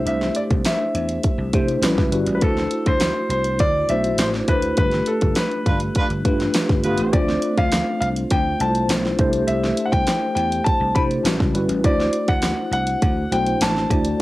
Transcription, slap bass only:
0.05 0.28 C2 medium
0.50 0.61 C2 medium
0.94 1.17 E2 medium
1.38 1.49 C2 medium
1.53 1.76 C3 medium
1.82 1.93 A1 medium
1.98 2.09 C#2 medium
2.11 2.23 G1 medium
2.27 2.38 A1 medium
2.42 2.64 D2 medium
2.86 3.09 D2 medium
3.29 3.60 C2 medium
3.60 3.82 D2 medium
3.89 4.12 B1 medium
4.18 4.41 A1 medium
4.48 4.70 D2 medium
4.78 5.00 G1 loud
5.22 5.33 G1 medium
5.66 5.88 G1 medium
6.10 6.21 G1 medium
6.25 6.47 G2 medium
6.69 6.80 G1 medium
6.83 6.95 G1 medium
6.98 7.09 A1 medium
7.13 7.35 D2 medium
7.58 7.80 D2 medium
8.01 8.23 C2 medium
8.31 8.53 D2 medium
8.60 8.82 C2 medium
8.88 9.11 B1 medium
9.19 9.41 C2 medium
9.48 9.70 C2 loud
9.92 10.04 C2 medium
10.36 10.59 E2 medium
10.80 10.92 C2 medium
10.96 11.18 C3 medium
11.24 11.36 A1 medium
11.40 11.51 C#2 medium
11.54 11.65 G1 medium
11.69 11.80 A1 medium
11.84 12.07 D2 loud
12.28 12.51 D2 loud
12.71 12.94 C2 medium
13.02 13.24 D2 medium
13.31 13.54 B1 medium
13.61 13.83 A1 medium
13.90 14.13 D2 medium

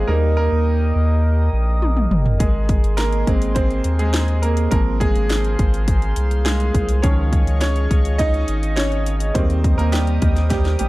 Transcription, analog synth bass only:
0.09 0.49 D#2 loud
0.52 0.92 D#2 medium
0.96 1.50 D#2 loud
1.53 2.07 A#1 medium
2.11 2.38 G1 loud
2.40 2.81 G#1 loud
2.84 3.24 G#1 loud
3.27 3.81 G#1 medium
3.85 4.68 D#2 medium
4.72 5.12 G#1 loud
5.16 5.56 G#1 medium
5.59 6.13 G#1 loud
6.17 6.71 C2 medium
6.75 7.02 C2 medium
7.04 7.44 C#2 medium
7.47 7.87 C#2 medium
7.91 8.45 C#2 medium
8.49 9.31 G#1 medium
9.35 9.76 D#2 medium
9.79 10.19 D#2 medium
10.22 10.76 D#2 loud
10.81 10.89 A#1 medium

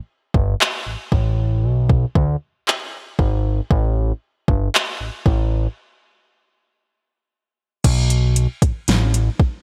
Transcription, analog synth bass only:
0.34 0.55 G1 medium
0.86 0.97 A1 soft
1.12 1.65 A1 medium
1.64 2.06 B1 loud
2.16 2.36 D2 medium
3.19 3.61 G#1 medium
3.71 4.13 A1 loud
4.48 4.69 G1 medium
5.00 5.10 A1 medium
5.26 5.68 A1 medium
7.84 8.47 B1 loud
8.62 8.72 A1 medium
8.88 9.30 A1 medium

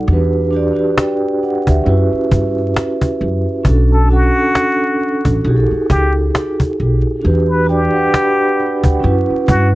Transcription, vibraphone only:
0.07 0.43 D4 medium
0.07 0.44 F#4 medium
0.07 0.45 G4 medium
0.13 0.46 B4 medium
0.51 0.71 D4 medium
0.51 0.72 F#4 medium
0.51 0.73 G4 medium
0.57 0.74 D5 medium
0.73 1.84 D4 medium
0.73 0.95 F#4 medium
0.73 0.96 G4 medium
0.79 0.97 B4 medium
0.98 1.40 B4 medium
0.98 1.40 G5 medium
1.43 1.67 F#5 medium
1.68 2.10 G4 medium
1.68 2.10 E5 medium
1.84 3.29 C#4 medium
1.84 3.30 E4 medium
1.88 3.32 F#4 medium
1.88 3.32 B4 medium
3.63 4.00 C#4 medium
3.63 4.01 D4 medium
3.63 4.01 F#4 medium
3.69 4.02 A4 medium
4.08 4.28 C#4 medium
4.08 4.29 D4 medium
4.08 4.30 F#4 medium
4.13 4.31 A4 medium
4.34 5.43 C#4 medium
4.34 5.44 D4 medium
4.34 5.45 F#4 medium
4.40 5.46 A4 loud
5.44 6.89 D#4 medium
5.44 6.90 F#4 medium
5.44 6.91 G4 medium
5.50 5.54 G#4 medium
5.56 6.95 A4 medium
7.21 7.58 D4 medium
7.21 7.58 F#4 medium
7.21 7.60 G4 medium
7.27 7.60 B4 medium
7.65 7.86 D4 medium
7.65 7.87 F#4 medium
7.69 7.88 G4 medium
7.69 7.89 D5 medium
7.91 9.01 D4 medium
7.91 9.03 G4 medium
7.91 8.84 F#5 medium
7.96 8.14 B4 medium
8.16 8.57 B5 medium
8.59 8.83 B4 medium
8.59 8.83 G5 medium
8.85 9.27 F#5 medium
9.00 9.75 C#4 medium
9.00 9.75 E4 medium
9.00 9.75 F#4 medium
9.05 9.75 B4 medium

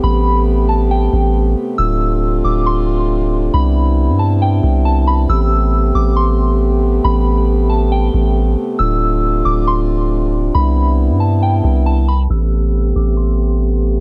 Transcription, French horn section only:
0.00 8.75 C3 medium
0.00 3.50 A3 medium
0.00 1.75 B3 medium
0.00 1.75 G4 medium
1.79 5.26 D4 medium
1.79 3.52 F4 medium
3.54 5.27 B3 medium
3.54 5.27 E4 medium
5.29 10.51 A3 medium
5.29 8.76 B3 medium
5.29 8.76 G4 medium
8.79 12.13 C3 medium
8.79 12.13 D4 medium
8.79 10.53 F4 medium
10.55 12.13 B3 medium
10.55 12.13 E4 medium
12.30 14.00 C3 medium
12.30 14.00 A3 medium
12.30 14.00 B3 medium
12.30 14.00 G4 medium

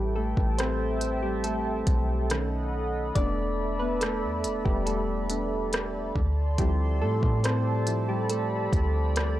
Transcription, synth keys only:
0.00 2.26 E3 medium
0.00 0.14 G3 medium
0.00 0.13 G4 medium
0.00 2.27 B4 medium
0.16 0.32 A3 medium
0.16 0.30 A4 medium
0.58 1.20 C4 medium
0.58 1.19 C5 loud
1.22 1.44 G3 medium
1.22 1.45 G4 medium
1.44 2.30 A3 medium
1.44 2.69 A4 medium
2.31 3.12 D#3 medium
2.31 3.12 A3 soft
2.31 3.13 C#4 medium
3.15 4.02 A3 medium
3.15 3.80 B3 medium
3.15 3.77 D4 medium
3.15 3.82 D5 loud
3.79 4.01 B3 medium
3.79 4.02 B4 medium
4.01 4.63 A3 medium
4.01 4.61 A4 medium
4.65 4.86 G3 medium
4.65 4.85 G4 medium
4.86 5.29 A3 medium
4.86 6.11 A4 medium
5.30 5.69 A3 soft
5.30 5.69 B3 soft
5.30 5.69 D4 soft
6.58 7.86 F3 medium
6.58 6.99 G3 medium
6.58 7.45 C4 soft
6.58 7.87 E4 medium
6.58 7.02 G4 medium
7.01 7.42 A3 medium
7.01 7.41 A4 medium
7.44 7.87 C4 medium
7.44 8.10 C5 loud
7.88 8.26 F3 soft
7.88 8.26 C4 soft
7.88 8.27 E4 medium
8.09 8.20 G3 medium
8.09 8.18 G4 medium
8.30 9.40 A3 medium
8.30 9.40 A4 medium

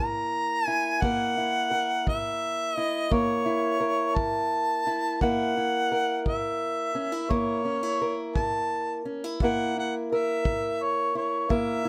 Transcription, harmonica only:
0.00 0.67 A#5 loud
0.67 1.03 G#5 loud
1.01 2.07 F#5 loud
2.08 2.75 E5 medium
2.75 3.14 D#5 medium
3.12 4.17 C#5 medium
4.16 5.21 A5 loud
5.22 6.22 F#5 loud
6.28 7.32 E5 medium
7.31 8.19 C#5 medium
8.36 9.02 A5 medium
9.43 9.74 F#5 medium
9.79 9.94 F#5 medium
10.12 10.84 E5 medium
10.83 11.16 C#5 medium
11.16 11.52 C#5 medium
11.50 11.89 E5 loud

